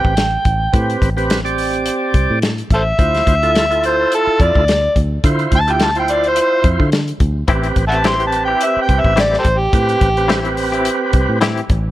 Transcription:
Already playing: tonewheel organ C4 G4 B4, harmonica G5
0.05 fingered electric bass A1, kick
0.17 snare, closed hi-hat
0.45 fingered electric bass A1, kick, closed hi-hat
0.73 fingered electric bass A2, tonewheel organ C4 G4 B4, kick, closed hi-hat
0.90 closed hi-hat
1.02 fingered electric bass A1, kick, closed hi-hat
1.17 tonewheel organ C4 G4 B4, closed hi-hat
1.30 snare, closed hi-hat
1.45 tonewheel organ C4 G4 D5, closed hi-hat
1.58 open hi-hat
1.74 closed hi-hat
1.86 closed hi-hat
2.14 fingered electric bass C2, kick, closed hi-hat
2.30 fingered electric bass A2
2.42 snare, closed hi-hat
2.58 closed hi-hat
2.70 fingered electric bass A1, harmonica A4 C5 E5, kick, closed hi-hat
2.99 fingered electric bass D2, tonewheel organ E4 F4 C5, kick, closed hi-hat
3.15 snare, closed hi-hat
3.27 fingered electric bass D2, kick, closed hi-hat
3.43 tonewheel organ E4 F4 A4, closed hi-hat
3.55 snare, closed hi-hat
3.70 tonewheel organ E4 F4 A4, closed hi-hat
3.84 harmonica C5, closed hi-hat
4.12 harmonica A4, closed hi-hat
4.27 muted fingered electric bass stroke
4.40 fingered electric bass F2, harmonica D5, kick, closed hi-hat
4.55 fingered electric bass D2, kick
4.68 snare, closed hi-hat
4.96 fingered electric bass D2, kick, closed hi-hat
5.24 fingered electric bass D3, tonewheel organ E4 F4 C5, kick, closed hi-hat
5.39 closed hi-hat
5.52 fingered electric bass D2, kick, closed hi-hat
5.56 harmonica A5
5.67 tonewheel organ E4 F4 G4, closed hi-hat
5.72 harmonica G5
5.80 snare, closed hi-hat
5.85 harmonica A5
5.95 tonewheel organ E4 F4 C5, harmonica G5, closed hi-hat
6.08 closed hi-hat
6.13 harmonica D5
6.24 closed hi-hat
6.28 harmonica C5
6.36 closed hi-hat
6.41 harmonica C5
6.64 fingered electric bass F2, kick, closed hi-hat
6.80 fingered electric bass D3, kick
6.92 snare, closed hi-hat
7.08 closed hi-hat
7.20 fingered electric bass D2, kick, closed hi-hat
7.48 fingered electric bass A1, clean electric guitar E3 C4 E4 G4, tonewheel organ C4 G4 B4, kick, closed hi-hat
7.63 closed hi-hat
7.76 fingered electric bass A1, kick, closed hi-hat
7.88 tonewheel organ C4 G4, harmonica E5 F#5 A5, closed hi-hat
7.92 tonewheel organ B4
8.04 clean electric guitar E3 C4 E4 G4, harmonica C6, snare, closed hi-hat
8.20 tonewheel organ C4 G4 B4, closed hi-hat
8.27 harmonica A5
8.32 closed hi-hat
8.45 clean electric guitar G4, harmonica G5
8.49 clean electric guitar C4 E4
8.61 harmonica E5, closed hi-hat
8.77 muted fingered electric bass stroke
8.82 harmonica G5
8.89 fingered electric bass C2, kick, closed hi-hat
9.00 harmonica E5
9.04 fingered electric bass A1, kick
9.16 clean electric guitar E3 C4 E4 G4, harmonica D5, snare, closed hi-hat
9.33 snare
9.39 harmonica G4 A4 C5
9.45 fingered electric bass A1, kick, closed hi-hat
9.58 harmonica G4
9.73 fingered electric bass A2, tonewheel organ C4 G4 B4, kick, closed hi-hat
9.89 closed hi-hat
10.01 fingered electric bass A1, kick, closed hi-hat
10.17 tonewheel organ C4 G4 B4, closed hi-hat
10.28 clean electric guitar E3 C4 E4 G4, snare, closed hi-hat
10.45 tonewheel organ C4 G4 B4, closed hi-hat
10.57 open hi-hat
10.72 clean electric guitar C4 E4 G4, closed hi-hat
10.85 closed hi-hat
11.13 fingered electric bass C2, kick, closed hi-hat
11.29 fingered electric bass A2
11.41 clean electric guitar E3 C4 E4 G4, snare, closed hi-hat
11.57 closed hi-hat
11.70 fingered electric bass A1, kick, closed hi-hat

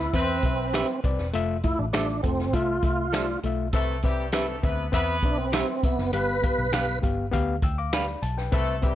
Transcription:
Already playing: picked electric bass D2, tonewheel organ E4
0.13 picked electric bass E2, reed electric piano C4 B4 E5, horn section C4 B4, tonewheel organ C4, kick, closed hi-hat
0.43 picked electric bass B1, reed electric piano C4 B4 E5, kick, closed hi-hat
0.73 reed electric piano C4 B4 E5, clean electric guitar G4 B4 E5, finger snap, snare, closed hi-hat
1.04 picked electric bass C2, reed electric piano C4 B4 D5, kick, closed hi-hat
1.19 picked electric bass E1, snare
1.33 picked electric bass F1, reed electric piano A3 F4 E5, closed hi-hat
1.63 reed electric piano A3 F4 E5, tonewheel organ E4, kick, closed hi-hat
1.79 picked electric bass A1, tonewheel organ D4
1.93 picked electric bass A1, reed electric piano A3 F4 E5, tonewheel organ D4, clean electric guitar A4 C5 E5, finger snap, snare, closed hi-hat
2.23 picked electric bass F1, reed electric piano A3 F4 A4, tonewheel organ C4, kick, closed hi-hat
2.39 snare
2.53 picked electric bass C2, reed electric piano A3 F4 E5, tonewheel organ F4, kick, closed hi-hat
2.83 picked electric bass C2, reed electric piano A3 F4 E5, kick, closed hi-hat
3.13 reed electric piano A3 F4 D5, clean electric guitar A4 C5 E5, finger snap, snare, closed hi-hat
3.43 picked electric bass B1, reed electric piano A3 F4 E5, closed hi-hat
3.73 picked electric bass C2, reed electric piano C3 C4 B4 E5, horn section A3 A4, kick, closed hi-hat
4.02 horn section G3 G4, reed electric piano C4 B4 E5, kick, closed hi-hat
4.32 horn section A3 A4, reed electric piano C4 B4 E5, clean electric guitar G4 B4 E5, finger snap, snare, closed hi-hat
4.63 picked electric bass D2, horn section B3 B4, reed electric piano C4 B4 E5, kick, closed hi-hat
4.92 picked electric bass E2, horn section B3 B4, reed electric piano C4 B4 E5, kick, closed hi-hat
5.23 picked electric bass B1, reed electric piano C4 B4 E5, tonewheel organ D4, kick, closed hi-hat
5.38 tonewheel organ C4
5.52 reed electric piano C4 B4 E5, tonewheel organ C4, clean electric guitar G4 B4 E5, finger snap, snare, closed hi-hat
5.83 picked electric bass C2, tonewheel organ B3, reed electric piano C4 B4 E5, kick, closed hi-hat
5.98 picked electric bass F#1, snare
6.13 picked electric bass G1, reed electric piano G2 B3 G4 F5, tonewheel organ B4, closed hi-hat
6.42 reed electric piano B3 G4 F5, kick, closed hi-hat
6.58 picked electric bass B1
6.72 picked electric bass B1, reed electric piano B3 G4 F5, clean electric guitar G4 B4 F5, finger snap, snare, closed hi-hat
7.02 picked electric bass G1, reed electric piano B3 G4 F5, kick, closed hi-hat
7.32 picked electric bass D2, reed electric piano B3 G4 F5, kick, closed hi-hat
7.62 picked electric bass D2, reed electric piano G5 E6, kick, closed hi-hat
7.78 reed electric piano F5 D6
7.93 clean electric guitar G4 B4 F5, reed electric piano D5 B5, finger snap, snare, closed hi-hat
8.22 picked electric bass B1, reed electric piano A5, closed hi-hat
8.38 reed electric piano B4 G5, snare
8.52 picked electric bass C2, reed electric piano C3 C4 B4 E5, horn section A3 A4, kick, closed hi-hat
8.82 horn section G3 G4, reed electric piano C4 B4 E5, kick, closed hi-hat

